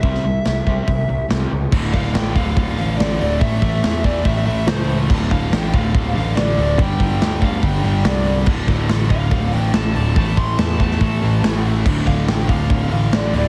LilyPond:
<<
  \new Staff \with { instrumentName = "Lead electric guitar" } { \time 4/4 \key d \minor \tempo 4 = 142 e''2. r4 | r8 f''8 g''8 f''4 f''8 d''8 d''8 | e''4. d''8 e''8 e''8 c''8. r16 | r8 f''8 g''8 f''4 f''8 d''8 d''8 |
g''4. f''8 g''8 g''8 d''8. r16 | r4. f''4 g''8 a''8 a''8 | a''8 c'''8 a''8 a''2 r8 | r8 f''8 g''8 f''4 f''8 d''8 d''8 | }
  \new Staff \with { instrumentName = "Distorted electric guitar" } { \clef bass \time 4/4 \key d \minor <c g c'>8 <c g>8 <c g>8 <c g c'>8 <c g>8 <c g>8 <c g c'>8 <c g>8 | <d, a, d>2~ <d, a, d>8 <d, a, d>8 <d, a, d>4 | <a, e a>2~ <a, e a>8 <a, e a>8 <a, e a>4 | <d, a, d>2~ <d, a, d>8 <d, a, d>8 <d, a, d>4 |
<g, d g>2~ <g, d g>8 <g, d g>8 <g, d g>4 | <d, a, d>2~ <d, a, d>8 <d, a, d>8 <d, a, d>4 | <a, e a>2~ <a, e a>8 <a, e a>8 <a, e a>4 | <d, a, d>2~ <d, a, d>8 <d, a, d>8 <d, a, d>4 | }
  \new Staff \with { instrumentName = "Overdriven electric guitar" } { \clef bass \time 4/4 \key d \minor <c g c'>8 <c g>8 <c g>8 <c g c'>8 <c g>8 <c g>8 <c g c'>8 <c g>8 | <d, a, d>4. <d, a, d>4. <d, a, d>4 | <a, e a>4. <a, e a>4. <a, e a>4 | <d, a, d>4. <d, a, d>4. <d, a, d>4 |
<g, d g>4. <g, d g>4. <g, d g>4 | <d, a, d>4. <d, a, d>4. <d, a, d>4 | <a, e a>4. <a, e a>4. <a, e a>4 | <d, a, d>4. <d, a, d>4. <d, a, d>4 | }
  \new Staff \with { instrumentName = "Distorted electric guitar" } { \clef bass \time 4/4 \key d \minor r1 | <d, a, d>8 <d, a, d>8 <d, a, d>8 <d, a, d>8 <d, a, d>8 <d, a, d>8 <d, a, d>8 <d, a, d>8 | <a, e a>8 <a, e a>8 <a, e a>8 <a, e a>8 <a, e a>8 <a, e a>8 <a, e a>8 <a, e a>8 | <d, a, d>8 <d, a, d>8 <d, a, d>8 <d, a, d>8 <d, a, d>8 <d, a, d>8 <d, a, d>8 <d, a, d>8 |
<g, d g>8 <g, d g>8 <g, d g>8 <g, d g>8 <g, d g>8 <g, d g>8 <g, d g>8 <g, d g>8 | <d, a, d>8 <d, a, d>8 <d, a, d>8 <d, a, d>8 <d, a, d>8 <d, a, d>8 <d, a, d>8 <d, a, d>8 | <a, e a>8 <a, e a>8 <a, e a>8 <a, e a>8 <a, e a>8 <a, e a>8 <a, e a>8 <a, e a>8 | <d, a, d>8 <d, a, d>8 <d, a, d>8 <d, a, d>8 <d, a, d>8 <d, a, d>8 <d, a, d>8 <d, a, d>8 | }
  \new Staff \with { instrumentName = "Picked electric bass" } { \clef bass \time 4/4 \key d \minor c,8 c,8 c,8 c,8 c,8 c,8 c,8 cis,8 | d,,8 d,,8 a,,8 d,,8 d,,8 a,,8 a,,8 d,,8 | a,,8 a,,8 e,4 a,,8 a,,8 cis,4 | d,,8 d,,8 a,,8 d,,8 d,,8 a,,8 a,,8 d,,8 |
g,,8 g,,8 d,4 g,,8 g,,8 c,4 | d,,8 d,,8 a,,8 d,,8 d,,8 a,,8 a,,8 d,,8 | a,,8 a,,8 e,4 a,,8 a,,8 a,,4 | d,,8 d,,8 a,,8 d,,8 d,,8 a,,8 a,,8 d,,8 | }
  \new DrumStaff \with { instrumentName = "Drums" } \drummode { \time 4/4 <hho bd>16 sn8. <hho sn>8 bd8 <hho bd>4 <hho sn>4 | <cymc bd>8 <hho bd>8 <hho sn>8 <hho bd>8 <hho bd>8 hho8 <hho sn>8 hho8 | <hho bd>8 <hho bd>8 <hho sn>8 <hho bd>8 <hho bd>8 hho8 sn8 hho8 | <cymc bd>8 <hho bd>8 <hho sn>8 <hho bd>8 <hho bd>8 hho8 <hho sn>8 hho8 |
<hho bd>8 <hho bd>8 <hho sn>8 <hho bd>8 <hho bd>8 hho8 <hho sn>8 hho8 | <cymc bd>8 <hho bd>8 <hho sn>8 <hho bd>8 <hho bd>8 hho8 sn8 hho8 | <hho bd>8 <hho bd>8 <hho sn>8 <hho bd>16 sn16 <hho bd>8 hho8 <hho sn>8 hho8 | <cymc bd>8 <hho bd>8 <hho sn>8 <hho bd>8 <hho bd>8 hho8 <hho sn>8 hho8 | }
>>